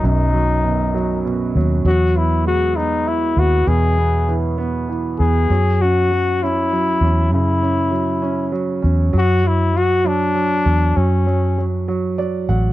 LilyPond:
<<
  \new Staff \with { instrumentName = "Flugelhorn" } { \time 6/8 \key e \lydian \tempo 4. = 66 dis'2 r4 | fis'8 e'8 fis'8 dis'8 e'8 fis'8 | gis'4 r4. gis'8~ | gis'8 fis'4 e'4. |
e'2 r4 | fis'8 e'8 fis'8 d'4. | cis'4 r2 | }
  \new Staff \with { instrumentName = "Grand piano" } { \clef bass \time 6/8 \key e \lydian <fis, fis>8 fis8 b,8 fis8 b,8 fis8 | fis8 b8 gis8 b8 e'8 b8 | b,8 b8 e8 b8 e8 b8 | fis8 cis'8 fis8 cis'8 fis8 cis'8 |
cis8 cis'8 fis8 cis'8 fis8 cis'8 | fis8 fis8 fis8 fis8 fis8 fis8 | fis8 fis8 fis8 fis8 <fis d''>8 <fis fis''>8 | }
  \new Staff \with { instrumentName = "Fingered electric bass" } { \clef bass \time 6/8 \key e \lydian b,,2~ b,,8 dis,8 | e,2~ e,8 dis,8 | e,2~ e,8 e,8 | fis,2~ fis,8 e,8 |
fis,2~ fis,8 e,8 | fis,2~ fis,8 e,8 | fis,2~ fis,8 a,,8 | }
>>